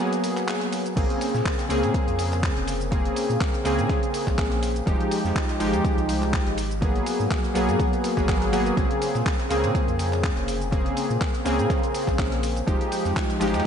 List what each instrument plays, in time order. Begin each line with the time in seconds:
Already playing: synth keys F#3 A#3 B3 G#4
0.00 shaker
0.13 snare, closed hi-hat, shaker
0.24 open hi-hat, ride, shaker
0.37 clap, closed hi-hat, ride, shaker
0.48 snare, clap, closed hi-hat, ride, shaker
0.61 snare, closed hi-hat
0.72 open hi-hat, ride, shaker
0.86 closed hi-hat, shaker
0.96 sub bass A#1, synth keys C#3 A#3 C4 G#4, kick, closed hi-hat, ride, crash, shaker
1.10 closed hi-hat
1.21 open hi-hat, ride, shaker
1.34 sub bass A#2, snare, shaker
1.46 kick, snare, clap, closed hi-hat, ride, shaker
1.59 snare, closed hi-hat, shaker
1.69 sub bass C#2, synth keys C#3 A#3 C4 G#4, open hi-hat, ride, shaker
1.83 sub bass A#2, closed hi-hat, ride, shaker
1.94 kick, closed hi-hat, ride, shaker
2.08 sub bass F2, closed hi-hat, shaker
2.19 open hi-hat, ride, shaker
2.33 clap, shaker
2.43 kick, snare, clap, closed hi-hat, ride, shaker
2.56 sub bass F1, closed hi-hat
2.67 open hi-hat, ride, shaker
2.81 closed hi-hat, shaker
2.91 synth keys C#3 A#3 C4 G#4, kick, closed hi-hat, ride, shaker
3.05 closed hi-hat
3.16 open hi-hat, ride, shaker
3.30 sub bass A#2, shaker
3.41 kick, snare, clap, closed hi-hat, ride, shaker
3.54 closed hi-hat, shaker
3.64 sub bass C#2, synth keys C#3 A#3 C4 G#4, snare, open hi-hat, ride, shaker
3.79 sub bass A#2, closed hi-hat, shaker
3.89 kick, snare, closed hi-hat, ride, shaker
4.03 closed hi-hat, shaker
4.14 open hi-hat, ride, shaker
4.27 sub bass A#1, kick, snare, clap, shaker
4.38 kick, snare, clap, closed hi-hat, ride, shaker
4.52 snare, closed hi-hat
4.63 open hi-hat, ride, shaker
4.76 closed hi-hat, shaker
4.86 sub bass F1, synth keys F3 G#3 D#4 G4, kick, closed hi-hat, ride, shaker
5.00 closed hi-hat
5.11 open hi-hat, ride, shaker
5.25 sub bass F2, snare, shaker
5.36 kick, snare, clap, closed hi-hat, ride, shaker
5.49 snare, closed hi-hat, shaker
5.59 sub bass G#1, synth keys F3 G#3 D#4 G4, open hi-hat, ride, shaker
5.73 sub bass F2, closed hi-hat, ride, shaker
5.84 kick, closed hi-hat, ride, shaker
5.98 sub bass C2, closed hi-hat, shaker
6.09 open hi-hat, ride, shaker
6.23 clap, shaker
6.33 kick, snare, clap, closed hi-hat, ride, shaker
6.47 sub bass G#1, closed hi-hat
6.58 open hi-hat, ride, shaker
6.71 closed hi-hat, shaker
6.81 synth keys F#3 A#3 B3 G#4, kick, closed hi-hat, ride, shaker
6.95 closed hi-hat
7.06 open hi-hat, ride, shaker
7.20 sub bass G#2, shaker
7.31 kick, snare, clap, closed hi-hat, ride, shaker
7.44 closed hi-hat, shaker
7.54 sub bass B1, synth keys F#3 A#3 B3 G#4, snare, open hi-hat, ride, shaker
7.69 sub bass G#2, closed hi-hat, shaker
7.80 kick, closed hi-hat, ride, shaker
7.93 closed hi-hat, shaker
8.04 open hi-hat, ride, shaker
8.17 sub bass G#1, synth keys F#3 A#3 B3 G#4, kick, snare, clap, shaker
8.28 kick, snare, clap, closed hi-hat, ride, shaker
8.42 snare, closed hi-hat
8.52 synth keys F#3 A#3 B3 G#4, open hi-hat, ride, shaker
8.66 closed hi-hat, shaker
8.76 sub bass A#1, synth keys C#3 A#3 C4 G#4, kick, closed hi-hat, ride, shaker
8.91 closed hi-hat
9.02 open hi-hat, ride, shaker
9.15 sub bass A#2, snare, shaker
9.26 kick, snare, clap, closed hi-hat, ride, shaker
9.39 snare, closed hi-hat, shaker
9.49 sub bass C#2, synth keys C#3 A#3 C4 G#4, open hi-hat, ride, shaker
9.64 sub bass A#2, closed hi-hat, ride, shaker
9.75 kick, closed hi-hat, ride, shaker
9.88 sub bass F2, closed hi-hat, shaker
9.99 open hi-hat, ride, shaker
10.13 clap, shaker
10.24 kick, snare, clap, closed hi-hat, ride, shaker
10.37 sub bass F1, closed hi-hat
10.48 open hi-hat, ride, shaker
10.62 closed hi-hat, shaker
10.71 synth keys C#3 A#3 C4 G#4, kick, closed hi-hat, ride, shaker
10.86 closed hi-hat
10.97 open hi-hat, ride, shaker
11.10 sub bass A#2, shaker
11.21 kick, snare, clap, closed hi-hat, ride, shaker
11.35 closed hi-hat, shaker
11.44 sub bass C#2, synth keys C#3 A#3 C4 G#4, snare, open hi-hat, ride, shaker
11.59 sub bass A#2, closed hi-hat, shaker
11.70 kick, snare, closed hi-hat, ride, shaker
11.83 closed hi-hat, shaker
11.94 open hi-hat, ride, shaker
12.08 sub bass A#1, kick, snare, clap, shaker
12.19 kick, snare, clap, closed hi-hat, ride, shaker
12.32 snare, closed hi-hat
12.43 open hi-hat, ride, shaker
12.57 closed hi-hat, shaker
12.66 sub bass F1, synth keys F3 G#3 D#4 G4, kick, closed hi-hat, ride, shaker
12.81 closed hi-hat
12.92 open hi-hat, ride, shaker
13.05 sub bass F2, snare, shaker
13.16 kick, snare, clap, closed hi-hat, ride, shaker
13.30 snare, closed hi-hat, shaker
13.40 sub bass G#1, synth keys F3 G#3 D#4 G4, snare, open hi-hat, ride, shaker
13.47 snare, ride
13.54 sub bass F2, snare, closed hi-hat, ride, shaker
13.60 snare, ride